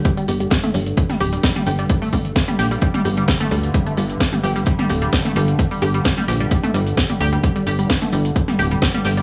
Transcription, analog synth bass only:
\new Staff \with { instrumentName = "Analog synth bass" } { \clef bass \time 4/4 \key c \dorian \tempo 4 = 130 r8 g,,8 r8 g,,8 r8 d,,8 r8 g,,8 | r8 g,,8 r8 bes,,8 r8 g,,8 r8 d,8 | r8 g,,8 r8 g,,8 r8 d,,8 r8 g,,8 | r8 g,,8 r8 bes,,8 r8 g,,8 r8 d,8 |
r8 g,,8 r8 g,,8 r8 d,,8 r8 g,,8 | }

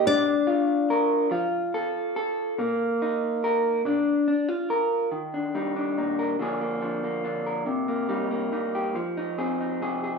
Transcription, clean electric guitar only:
\new Staff \with { instrumentName = "Clean electric guitar" } { \time 6/8 \key bes \mixolydian \tempo 4. = 47 << { d'8 f'8 bes'8 f'8 a'8 a'8 | bes8 ees'8 bes'8 d'8 d'16 f'16 bes'8 | r16 d'16 ees'16 d'16 ees'16 bes'16 <f bes d' aes'>16 bes16 d'16 bes16 d'16 bes'16 | r16 bes16 ees'16 bes16 ees'16 g'16 r16 ees'16 aes'16 ees'16 aes'16 aes'16 | } \\ { bes,4 r8 f4 r8 | bes,4 r8 bes,4 r8 | ees8 g8 bes,8 d8 f8 d8 | c8 g8 g,8 f8 c'8 c8 | } >> }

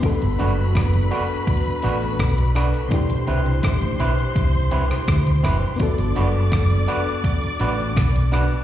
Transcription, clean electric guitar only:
\new Staff \with { instrumentName = "Clean electric guitar" } { \time 4/4 \key g \major \tempo 4 = 83 r8 <d' fis' b'>8 r8 <d' fis' b'>8 r8 <d' fis' b'>8 r8 <d' fis' b'>8 | r8 <c' e' b'>8 r8 <c' e' b'>8 r8 <c' e' b'>8 r8 <c' e' b'>8 | r8 <d' fis' b'>8 r8 <d' fis' b'>8 r8 <d' fis' b'>8 r8 <d' fis' b'>8 | }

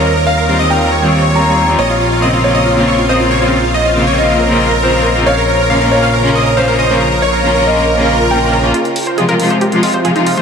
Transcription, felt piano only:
\new Staff \with { instrumentName = "Felt piano" } { \time 4/4 \key bes \dorian \tempo 4 = 138 des''8 f''4 g''4. bes''4 | des''4. des''4. c''4~ | c''8 ees''4 ees''4. c''4 | des''4. des''4. c''4~ |
c''8 des''4 ees''4. g''4 | r1 | }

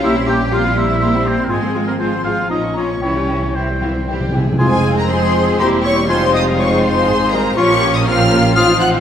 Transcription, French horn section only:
\new Staff \with { instrumentName = "French horn section" } { \time 3/4 \key f \minor \tempo 4 = 121 << { des'4 c'2~ | c'2 f'4 | e'2~ e'8 r8 | c'4 c'4 c'4 |
c'2. | des'4 des'4 ees'4 | } \\ { g2. | f2. | g2~ g8 r8 | aes4 aes4 bes4 |
aes2. | f4 f4 f4 | } >> }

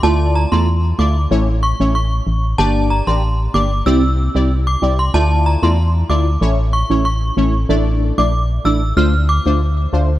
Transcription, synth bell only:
\new Staff \with { instrumentName = "Synth bell" } { \time 4/4 \key d \minor \tempo 4 = 94 a''16 r16 bes''16 c'''16 r8 d'''16 r8. cis'''16 r16 cis'''8. r16 | a''16 r16 bes''16 c'''16 r8 d'''16 r16 e'''8. r8 d'''16 r16 c'''16 | a''16 r16 bes''16 c'''16 r8 d'''16 r8. cis'''16 r16 cis'''8. r16 | r8. d'''16 r8 e'''16 r16 f'''16 r16 d'''16 r4 r16 | }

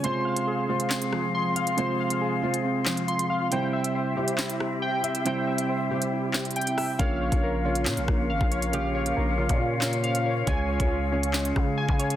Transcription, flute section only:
\new Staff \with { instrumentName = "Flute section" } { \time 4/4 \key f \minor \tempo 4 = 138 << { <c' f' f''>1~ | <c' f' f''>1 | <c' e' e''>1~ | <c' e' e''>1 |
<des' f' f''>1~ | <des' f' f''>1~ | <des' f' f''>1 | } \\ { aes'1~ | aes'1 | g'1~ | g'1 |
bes'1~ | bes'1 | aes'1 | } >> }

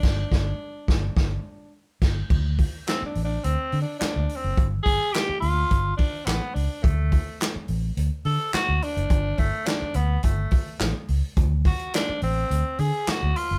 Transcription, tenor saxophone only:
\new Staff \with { instrumentName = "Tenor saxophone" } { \time 4/4 \key d \mixolydian \tempo 4 = 106 d'2. r4 | r4 \tuplet 3/2 { c'8 d'8 d'8 c'4 d'8 d'4 c'8 } | r8 gis'8 g'8 f'4 d'8 b8 d'8 | a4 r4. a'8 fis'8 d'8~ |
d'8 a8 d'8 b8 a4 r4 | r8 fis'8 d'8 c'4 gis'8 fis'8 f'8 | }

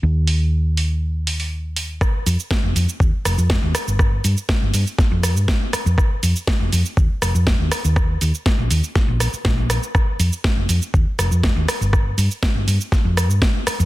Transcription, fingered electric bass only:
\new Staff \with { instrumentName = "Fingered electric bass" } { \clef bass \time 4/4 \key ees \major \tempo 4 = 121 ees,1 | r8 f,16 r8 f,,16 f,16 r16 ees,16 r16 f,,16 f,16 r16 ees,16 r16 g,,16~ | g,,8 g,16 r8 g,,16 g,16 r8 f,8 g,16 r8. f,16 | r8 f,16 r8 f,,16 f,16 r16 ees,16 r16 f,,16 f,16 r16 ees,16 r16 ees,16~ |
ees,8 ees,16 r8 bes,,16 ees,16 r8 bes,,16 r8 bes,,8. r16 | r8 f,16 r8 f,,16 f,16 r16 ees,16 r16 f,,16 f,16 r16 ees,16 r16 g,,16~ | g,,8 g,16 r8 g,,16 g,16 r8 f,8 g,16 r8. f,16 | }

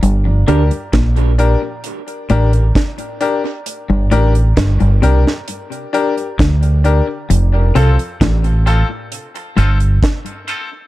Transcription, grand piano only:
\new Staff \with { instrumentName = "Grand piano" } { \time 4/4 \key g \minor \tempo 4 = 66 r8 <d' g' bes'>16 r8. <d' g' bes'>16 r8. <d' g' bes'>16 <g' bes'>16 r8 <d' g' bes'>16 r16 | r8 <d' g' bes'>16 r8. <d' g' bes'>16 r8. <d' g' bes'>16 <g' bes'>16 r8 <d' g' bes'>16 r16 | r8 <c' f' a'>16 r8. <c' f' a'>16 r8. <c' f' a'>16 <f' a'>16 r8 <c' f' a'>16 r16 | }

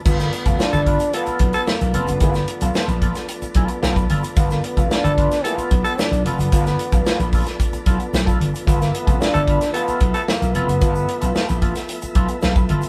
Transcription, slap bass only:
\new Staff \with { instrumentName = "Slap bass" } { \clef bass \time 4/4 \key g \mixolydian \tempo 4 = 112 g,,8 r16 f,,16 r16 g,,8 r8. b,,16 r8 b,,16 f,,16 fis,,16 | g,,8 r16 b,,16 r16 bes,,8 r8. b,,16 r16 b,,8 g,,16 r16 | g,,8 r16 f,,16 r16 g,,8 r8. b,,16 r8 b,,16 f,,16 fis,,16 | g,,8 r16 b,,16 r16 bes,,8 r8. b,,16 r16 b,,8 g,,16 r16 |
g,,8 r16 f,,16 r16 g,,8 r8. b,,16 r8 b,,16 f,,16 fis,,16 | g,,8 r16 b,,16 r16 bes,,8 r8. b,,16 r16 b,,8 g,,16 r16 | }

